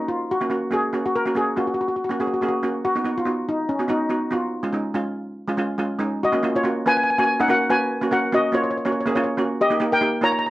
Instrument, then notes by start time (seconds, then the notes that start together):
steel pan
Already playing: A#3 C#4 F#4
0.08 F4
0.31 F#4
0.41 A#3 C#4 F#4
0.50 A#3 C#4 F#4
0.71 A#3 C#4 F#4 G#4
0.93 A#3 C#4 F#4
1.06 F#4
1.16 A#4
1.26 A#3 C#4 F#4
1.35 A#3 C#4 F#4 G#4
1.56 A#3 C#4 F4 F#4
1.67 F#4
1.74 F#4
1.81 F#4
1.88 F#4
1.96 F#4
2.04 F#4
2.09 A#3 C#4 F#4
2.20 A#3 C#4 F#4 G#4
2.27 F#4
2.34 F#4
2.41 A#3 C#4 F#4 G#4
2.48 F#4
2.63 A#3 C#4 F#4
2.85 F#4
2.95 B3 D#4 F#4
3.04 B3 D#4 F#4
3.18 F4
3.25 B3 D#4 F#4
3.49 D#4
3.69 C#4
3.79 B3 D#4 F#4
3.88 B3 D#4 F#4
4.09 B3 D#4 F#4
4.31 B3 D#4 F4 F#4
4.63 G#3 C#4 F4
4.73 G#3 C#4 D#4
4.94 G#3 C#4 F4
5.48 G#3 C#4 F4
5.57 G#3 C#4 F4
5.78 G#3 C#4 F4
5.99 G#3 C#4 D#4
6.23 F#4 D#5
6.32 A#3 C#4 F#4
6.43 A#3 C#4 F4
6.55 F4 C#5
6.63 A#3 C#4 F#4
6.86 A#3 C#4 F4 B4 G#5
6.97 G#5
7.04 G#5
7.10 G#5
7.18 A#3 C#4 F#4 G#5
7.24 G#5
7.40 A#3 C#4 D#4 A#4 F#5
7.48 A#3 C#4 F#4 A#4 F#5
7.70 A#3 C#4 F#4 B4 G#5
8.01 A#3 C#4 F#4
8.11 A#3 C#4 F#4 A#4 F#5
8.32 A#3 C#4 F#4 D#5
8.52 A#3 C#4 F4 F#4 C#5
8.64 C#5
8.71 C#5
8.77 C#5
8.85 A#3 C#4 F#4 C#5
8.92 C#5
9.01 C#5
9.06 A#3 C#4 G#4 C#5
9.15 A#3 C#4 F4 C#5
9.24 C#5
9.37 A#3 C#4 F#4
9.61 G4 D#5
9.70 A#3 D#4 G4
9.80 A#3 D#4 G4
9.92 A#4 G5
10.01 A#3 D#4 G4
10.21 A#3 D#4 F4 C#5 A#5
10.32 A#5
10.39 A#5
10.47 A#5